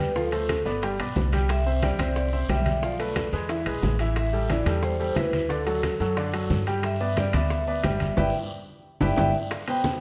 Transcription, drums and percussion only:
0.00 high bongo
0.16 high bongo, high conga, long guiro, maracas
0.32 high bongo, high conga, high timbale, maracas
0.49 high bongo, high conga, high timbale, short guiro, maracas
0.65 high bongo, high conga, short guiro, maracas
0.82 high bongo, high conga, high timbale, long guiro, maracas
0.99 high conga, high timbale, maracas
1.16 high bongo, low bongo, high conga, low timbale, short guiro, maracas
1.32 high bongo, high conga, high timbale, short guiro, maracas
1.49 high bongo, high conga, high timbale, long guiro, maracas
1.66 high bongo, high conga
1.82 high bongo, high conga, high timbale, short guiro, maracas
1.99 high bongo, high conga, high timbale, short guiro, maracas
2.16 high bongo, high conga, long guiro, maracas
2.33 high conga
2.49 high bongo, low bongo, high conga, high timbale, low timbale, short guiro, maracas
2.66 high bongo, high conga, high timbale, short guiro, maracas
2.82 high bongo, high conga, long guiro, maracas
3.00 high bongo, high conga, high timbale
3.16 high bongo, high conga, high timbale, short guiro, maracas
3.32 high bongo, high conga, short guiro, maracas
3.49 high bongo, high conga, high timbale, long guiro, maracas
3.66 high conga, high timbale
3.83 high bongo, low bongo, high conga, low timbale, short guiro, maracas
3.99 high bongo, high timbale, short guiro, maracas
4.16 high bongo, high conga, high timbale, long guiro, maracas
4.33 high bongo, high conga
4.50 high bongo, high conga, high timbale, short guiro, maracas
4.66 high bongo, high conga, high timbale, short guiro, maracas
4.83 high bongo, high conga, long guiro, maracas
5.00 high conga
5.16 high bongo, low bongo, high conga, high timbale, low timbale, short guiro, maracas
5.33 high bongo, high conga, high timbale, short guiro, maracas
5.50 high bongo, high conga, long guiro, maracas
5.67 high bongo, high conga, high timbale, maracas
5.83 high bongo, high conga, high timbale, short guiro, maracas
6.00 high bongo, high conga, short guiro, maracas
6.17 high bongo, high conga, high timbale, long guiro, maracas
6.33 high conga, high timbale, maracas
6.50 high bongo, low bongo, high conga, short guiro, maracas
6.67 high bongo, high timbale, short guiro, maracas
6.83 high bongo, high conga, high timbale, long guiro, maracas
7.01 high bongo, high conga
7.17 high bongo, high conga, high timbale, short guiro, maracas
7.33 high bongo, high conga, high timbale, short guiro, maracas
7.50 high bongo, high conga, long guiro, maracas
7.68 high conga
7.84 high bongo, low bongo, high conga, high timbale, low timbale, short guiro, maracas
8.00 high bongo, high conga, high timbale, short guiro, maracas
8.17 low bongo, high conga, high timbale, long guiro, maracas
9.01 low bongo, high conga, high timbale, long guiro, maracas
9.17 low bongo, high conga, high timbale, long guiro, maracas
9.51 high bongo, high conga, high timbale, long guiro, maracas
9.68 high conga, high timbale, maracas
9.84 high bongo, high conga, low timbale, short guiro, maracas

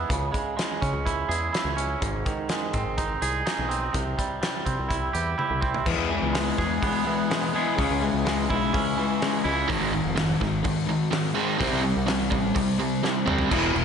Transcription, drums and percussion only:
0.10 kick, closed hi-hat
0.34 kick, closed hi-hat
0.59 snare, closed hi-hat
0.82 kick, closed hi-hat
1.07 kick, closed hi-hat
1.31 closed hi-hat
1.54 snare, closed hi-hat
1.78 closed hi-hat
2.02 kick, closed hi-hat
2.26 kick, closed hi-hat
2.49 snare, closed hi-hat
2.73 kick, closed hi-hat
2.98 kick, closed hi-hat
3.22 closed hi-hat
3.47 snare, closed hi-hat
3.71 closed hi-hat
3.94 kick, closed hi-hat
4.19 kick, closed hi-hat
4.43 snare, closed hi-hat
4.66 kick, closed hi-hat
4.91 kick, closed hi-hat
5.15 closed hi-hat
5.39 high tom
5.62 kick
5.74 floor tom
5.86 kick, crash
6.35 snare, open hi-hat
6.58 kick, snare
6.83 kick, open hi-hat
7.31 snare, open hi-hat
7.78 kick, open hi-hat
8.26 snare, open hi-hat
8.50 kick
8.74 kick, open hi-hat
9.22 snare, open hi-hat
9.70 kick, open hi-hat
10.17 snare, open hi-hat
10.41 kick, snare
10.64 kick, open hi-hat
11.13 snare, open hi-hat
11.61 kick, open hi-hat
12.08 snare, open hi-hat
12.32 kick
12.56 kick, open hi-hat
13.04 snare
13.28 mid tom
13.38 floor tom
13.51 kick, crash
13.76 crash

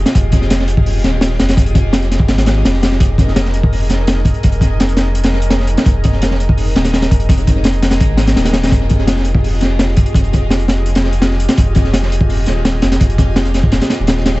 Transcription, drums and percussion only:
0.06 snare, closed hi-hat
0.15 kick, closed hi-hat
0.32 kick, closed hi-hat
0.42 snare
0.50 snare, closed hi-hat
0.59 snare
0.68 closed hi-hat
0.77 kick
0.86 open hi-hat
1.04 snare, closed hi-hat
1.21 snare, closed hi-hat
1.31 snare
1.39 snare, closed hi-hat
1.49 snare, closed hi-hat
1.57 kick, closed hi-hat
1.66 closed hi-hat
1.75 kick, closed hi-hat
1.93 snare, closed hi-hat
2.03 closed hi-hat
2.11 snare, closed hi-hat
2.20 kick
2.28 snare, closed hi-hat
2.38 snare, closed hi-hat
2.46 snare, closed hi-hat
2.65 snare, closed hi-hat
2.74 snare
2.83 snare, closed hi-hat
2.92 snare
3.00 kick, closed hi-hat
3.18 kick, closed hi-hat
3.28 snare
3.36 snare, closed hi-hat
3.45 snare
3.54 closed hi-hat
3.63 kick
3.73 open hi-hat
3.90 snare, closed hi-hat
4.07 snare, closed hi-hat
4.16 snare
4.25 kick, closed hi-hat
4.34 closed hi-hat
4.43 kick, closed hi-hat
4.52 closed hi-hat
4.61 kick, closed hi-hat
4.80 snare, closed hi-hat
4.89 closed hi-hat
4.97 snare, closed hi-hat
5.15 closed hi-hat
5.23 snare, closed hi-hat
5.33 snare
5.42 closed hi-hat
5.50 snare, closed hi-hat
5.60 snare
5.67 closed hi-hat
5.77 snare, closed hi-hat
5.86 kick, closed hi-hat
6.04 kick, closed hi-hat
6.13 snare
6.22 snare, closed hi-hat
6.31 snare
6.40 closed hi-hat
6.49 kick
6.57 open hi-hat
6.76 snare, closed hi-hat
6.84 snare, closed hi-hat
6.93 snare, closed hi-hat
7.02 snare, closed hi-hat
7.11 kick, closed hi-hat
7.20 closed hi-hat
7.29 kick, closed hi-hat
7.37 closed hi-hat
7.47 kick, closed hi-hat
7.64 snare, closed hi-hat
7.73 closed hi-hat
7.83 snare, closed hi-hat
7.91 snare, closed hi-hat
8.00 kick, closed hi-hat
8.17 snare, closed hi-hat
8.27 snare, closed hi-hat
8.36 snare, closed hi-hat
8.45 snare, closed hi-hat
8.53 snare, closed hi-hat
8.63 snare, closed hi-hat
8.67 snare, closed hi-hat
8.72 kick, closed hi-hat
8.89 kick, closed hi-hat
8.99 snare
9.07 snare, closed hi-hat
9.16 snare
9.25 closed hi-hat
9.35 kick
9.44 open hi-hat
9.61 snare, closed hi-hat
9.79 snare, closed hi-hat
9.88 snare
9.97 kick, closed hi-hat
10.06 closed hi-hat
10.14 kick, closed hi-hat
10.24 closed hi-hat
10.33 kick, closed hi-hat
10.50 snare, closed hi-hat
10.59 closed hi-hat
10.68 snare, closed hi-hat
10.86 closed hi-hat
10.95 snare, closed hi-hat
11.04 snare
11.13 closed hi-hat
11.22 snare, closed hi-hat
11.31 snare
11.40 closed hi-hat
11.49 snare, closed hi-hat
11.57 kick, closed hi-hat
11.75 kick, closed hi-hat
11.84 snare
11.93 snare, closed hi-hat
12.03 snare
12.12 closed hi-hat
12.21 kick
12.30 open hi-hat
12.46 snare, closed hi-hat
12.65 snare, closed hi-hat
12.74 snare
12.82 snare, closed hi-hat
12.92 snare, closed hi-hat
13.01 kick, closed hi-hat
13.10 closed hi-hat
13.18 kick, closed hi-hat
13.36 snare, closed hi-hat
13.45 closed hi-hat
13.54 snare, closed hi-hat
13.63 kick
13.72 snare, closed hi-hat
13.81 snare, closed hi-hat
13.90 snare, closed hi-hat
14.07 snare, closed hi-hat
14.17 snare
14.26 snare, closed hi-hat
14.35 snare

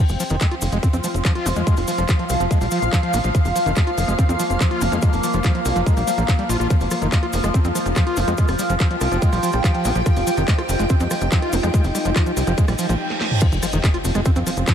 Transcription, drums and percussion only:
0.09 open hi-hat, cabasa
0.20 open hi-hat, cabasa
0.29 closed hi-hat, cabasa
0.41 kick, clap, closed hi-hat, cabasa
0.51 closed hi-hat
0.61 open hi-hat, cabasa
0.72 closed hi-hat, cabasa
0.83 kick, closed hi-hat, cabasa
0.93 closed hi-hat, cabasa
1.04 open hi-hat, cabasa
1.14 closed hi-hat, cabasa
1.25 kick, clap, closed hi-hat, cabasa
1.35 closed hi-hat
1.46 open hi-hat, cabasa
1.56 closed hi-hat, cabasa
1.67 kick, closed hi-hat, cabasa
1.77 open hi-hat, cabasa
1.88 open hi-hat, cabasa
1.98 closed hi-hat, cabasa
2.08 kick, clap, closed hi-hat, cabasa
2.19 closed hi-hat
2.29 open hi-hat, cabasa
2.40 closed hi-hat, cabasa
2.51 kick, closed hi-hat, cabasa
2.61 open hi-hat, cabasa
2.71 open hi-hat, cabasa
2.82 closed hi-hat, cabasa
2.93 kick, clap, closed hi-hat, cabasa
3.03 closed hi-hat
3.13 open hi-hat, cabasa
3.24 closed hi-hat, cabasa
3.35 kick, closed hi-hat, cabasa
3.45 open hi-hat, cabasa
3.56 open hi-hat, cabasa
3.66 closed hi-hat, cabasa
3.76 kick, clap, closed hi-hat, cabasa
3.87 closed hi-hat
3.98 open hi-hat, cabasa
4.08 closed hi-hat, cabasa
4.19 kick, closed hi-hat, cabasa
4.29 closed hi-hat, cabasa
4.39 open hi-hat, cabasa
4.50 closed hi-hat, cabasa
4.60 kick, clap, closed hi-hat, cabasa
4.71 closed hi-hat
4.81 open hi-hat, cabasa
4.92 closed hi-hat, cabasa
5.02 kick, closed hi-hat, cabasa
5.13 open hi-hat, cabasa
5.23 open hi-hat, cabasa
5.33 closed hi-hat, cabasa
5.44 kick, clap, closed hi-hat, cabasa
5.55 closed hi-hat
5.65 open hi-hat, cabasa
5.76 closed hi-hat, cabasa
5.86 kick, closed hi-hat, cabasa
5.97 open hi-hat, cabasa
6.07 open hi-hat, cabasa
6.18 closed hi-hat, cabasa
6.28 kick, clap, closed hi-hat, cabasa
6.39 closed hi-hat
6.49 open hi-hat, cabasa
6.60 closed hi-hat, cabasa
6.70 kick, cross-stick, closed hi-hat, cabasa
6.81 open hi-hat, cabasa
6.91 cross-stick, open hi-hat, cabasa
7.02 closed hi-hat, cabasa
7.12 kick, clap, closed hi-hat, cabasa
7.23 cross-stick, closed hi-hat
7.33 open hi-hat, cabasa
7.44 cross-stick, closed hi-hat, cabasa
7.54 kick, closed hi-hat, cabasa
7.65 closed hi-hat, cabasa
7.75 cross-stick, open hi-hat, cabasa
7.86 closed hi-hat, cabasa
7.96 kick, cross-stick, clap, closed hi-hat, cabasa
8.07 closed hi-hat
8.16 open hi-hat, cabasa
8.28 cross-stick, closed hi-hat, cabasa
8.38 kick, closed hi-hat, cabasa
8.48 cross-stick, open hi-hat, cabasa
8.59 open hi-hat, cabasa
8.70 closed hi-hat, cabasa
8.80 kick, cross-stick, clap, closed hi-hat, cabasa
8.91 closed hi-hat
9.01 cross-stick, open hi-hat, cabasa
9.12 closed hi-hat, cabasa
9.22 kick, closed hi-hat, cabasa
9.33 cross-stick, open hi-hat, cabasa
9.43 open hi-hat, cabasa
9.52 cross-stick, closed hi-hat, cabasa
9.64 kick, clap, closed hi-hat, cabasa
9.75 closed hi-hat
9.85 cross-stick, open hi-hat, cabasa
9.95 closed hi-hat, cabasa
10.06 kick, cross-stick, closed hi-hat, cabasa
10.16 open hi-hat, cabasa
10.27 open hi-hat, cabasa
10.37 cross-stick, closed hi-hat, cabasa
10.48 kick, clap, closed hi-hat, cabasa
10.58 cross-stick, closed hi-hat
10.69 open hi-hat, cabasa
10.79 closed hi-hat, cabasa
10.89 kick, cross-stick, closed hi-hat, cabasa
11.00 closed hi-hat, cabasa
11.11 cross-stick, open hi-hat, cabasa
11.21 closed hi-hat, cabasa
11.32 kick, clap, closed hi-hat, cabasa
11.42 cross-stick, closed hi-hat
11.53 open hi-hat, cabasa
11.63 cross-stick, closed hi-hat, cabasa
11.74 kick, closed hi-hat, cabasa
11.84 open hi-hat, cabasa
11.95 cross-stick, open hi-hat, cabasa
12.05 closed hi-hat, cabasa
12.16 kick, cross-stick, clap, closed hi-hat, cabasa
12.26 closed hi-hat, cabasa
12.37 open hi-hat, cabasa
12.47 cross-stick, closed hi-hat, cabasa
12.58 kick, closed hi-hat, cabasa
12.68 cross-stick, open hi-hat, cabasa
12.78 open hi-hat, cabasa
12.89 closed hi-hat, cabasa
13.10 snare
13.21 snare
13.31 mid tom
13.41 kick, cross-stick, closed hi-hat, crash, cabasa
13.52 closed hi-hat, cabasa
13.63 cross-stick, open hi-hat, cabasa
13.72 closed hi-hat, cabasa
13.84 kick, clap, closed hi-hat, cabasa
13.94 cross-stick, closed hi-hat
14.04 open hi-hat, cabasa
14.15 cross-stick, closed hi-hat, cabasa
14.25 kick, closed hi-hat, cabasa
14.36 closed hi-hat, cabasa
14.47 cross-stick, open hi-hat, cabasa
14.57 closed hi-hat, cabasa
14.68 kick, cross-stick, clap, closed hi-hat, cabasa

